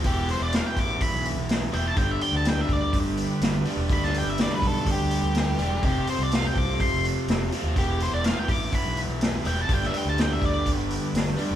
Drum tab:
HH |o-o-o-o-o-o-o-o-|o-o-o-o-o-o-o-o-|o-o-o-o-o-o-o-o-|o-o-o-o-o-o-o-o-|
SD |----o-------o---|----o-------o---|-o--o-------o---|----o-------o---|
BD |o-----o-o-------|o-----o-o-------|o-----o-o-------|o-----o-o-------|

HH |o-o-o-o-o-o-o-o-|o-o-o-o-o-o-o-o-|
SD |----o-------o---|-o--o-------o---|
BD |o-----o-o-------|o-----o-o-------|